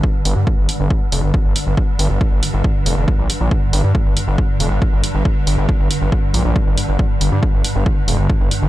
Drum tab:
HH |-o-o-o-o|-o-o-o-o|-o-o-o-o|-o-o-o-o|
BD |o-o-o-o-|o-o-o-o-|o-o-o-o-|o-o-o-o-|

HH |-o-o-o-o|
BD |o-o-o-o-|